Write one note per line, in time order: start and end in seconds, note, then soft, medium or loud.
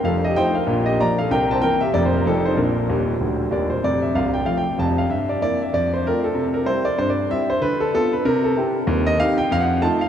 0.03 0.31 F1 medium
0.03 0.31 F2 medium
0.03 0.23 A4 medium
0.03 0.23 F5 medium
0.24 0.36 G4 medium
0.24 0.36 D#5 medium
0.36 0.53 F3 soft
0.36 0.54 A3 soft
0.36 0.54 D#4 medium
0.36 0.54 C5 medium
0.36 0.55 G5 loud
0.55 0.85 A#4 medium
0.55 0.86 F5 medium
0.67 0.94 A#1 medium
0.67 0.94 A#2 medium
0.86 0.98 G4 medium
0.86 0.99 D#5 medium
0.99 1.16 F3 soft
0.99 1.17 A#3 medium
0.99 1.17 D4 soft
0.99 1.17 D5 medium
0.99 1.18 A#5 loud
1.18 1.31 A4 medium
1.18 1.31 F5 medium
1.31 1.57 C2 medium
1.31 1.58 C3 medium
1.31 1.49 A#4 medium
1.31 1.50 G5 loud
1.51 1.63 C5 medium
1.51 1.63 A5 medium
1.61 1.79 E3 medium
1.61 1.79 A#3 medium
1.61 1.79 C4 medium
1.61 1.80 A#4 medium
1.61 1.81 G5 loud
1.81 1.93 G4 medium
1.81 1.94 E5 loud
1.93 2.20 F1 medium
1.93 2.20 F2 medium
1.93 2.11 F3 medium
1.93 2.11 A#3 soft
1.93 2.12 D4 medium
1.93 2.04 D5 loud
2.06 2.15 C5 medium
2.17 2.26 A#4 medium
2.26 2.52 F1 medium
2.26 2.52 F2 medium
2.26 2.43 F3 medium
2.26 2.44 C4 medium
2.26 2.44 D#4 soft
2.26 2.45 A4 medium
2.46 2.57 D#4 medium
2.46 2.58 C5 medium
2.56 2.84 A#1 medium
2.56 2.83 A#2 medium
2.56 3.67 D4 medium
2.56 3.70 A#4 medium
2.89 3.13 D#1 medium
2.89 3.13 D#2 medium
3.20 3.43 D1 medium
3.20 3.44 D2 medium
3.51 3.75 D#1 medium
3.51 3.75 D#2 medium
3.51 3.71 D5 medium
3.70 3.83 C5 medium
3.83 4.08 F1 medium
3.83 4.09 F2 medium
3.83 4.02 D5 medium
4.02 4.15 E5 medium
4.15 4.40 C1 medium
4.15 4.40 C2 medium
4.15 4.34 F5 medium
4.34 4.46 G5 medium
4.45 4.63 F3 soft
4.45 4.63 A3 soft
4.45 4.63 C4 soft
4.45 4.55 F5 medium
4.58 4.79 G5 medium
4.78 5.03 F1 medium
4.78 5.04 F2 medium
4.78 4.97 A5 medium
4.98 5.10 F5 medium
5.10 5.36 G2 medium
5.10 5.29 E5 medium
5.29 5.41 D5 medium
5.42 5.59 A#3 soft
5.42 5.59 E4 medium
5.42 5.60 D5 loud
5.62 5.74 E5 medium
5.73 6.00 F2 medium
5.73 5.92 D5 medium
5.94 6.05 C5 medium
6.06 6.23 A3 soft
6.06 6.24 C4 soft
6.06 6.24 F4 medium
6.06 6.24 A#4 medium
6.24 6.55 A4 medium
6.35 6.62 C3 medium
6.54 6.67 A#4 medium
6.66 6.83 G3 medium
6.66 6.83 C4 medium
6.66 6.84 E4 medium
6.66 6.86 C5 loud
6.85 6.98 D5 medium
6.98 7.25 G2 medium
6.98 7.08 C5 loud
7.10 7.31 D5 medium
7.30 7.47 G3 soft
7.30 7.47 C4 medium
7.30 7.48 E4 medium
7.30 7.49 E5 loud
7.50 7.62 C5 medium
7.61 7.88 D3 medium
7.61 7.81 B4 loud
7.80 7.93 A4 medium
7.95 8.12 B3 medium
7.95 8.12 F4 medium
7.95 8.13 A4 loud
8.13 8.25 B4 medium
8.25 8.52 C3 loud
8.25 8.44 A#4 loud
8.44 8.57 A4 medium
8.56 8.73 C4 medium
8.56 8.74 E4 soft
8.56 8.75 G4 medium
8.87 9.14 D#2 loud
9.07 9.20 D#5 loud
9.19 9.36 C4 medium
9.19 9.37 D#4 medium
9.19 9.37 G4 medium
9.19 9.38 F5 loud
9.38 9.51 G5 loud
9.51 9.78 F2 loud
9.51 9.61 F5 loud
9.61 9.83 F#5 medium
9.81 9.99 A3 medium
9.81 9.99 D#4 medium
9.81 10.00 F4 medium
9.81 10.01 A5 loud
10.01 10.09 F5 medium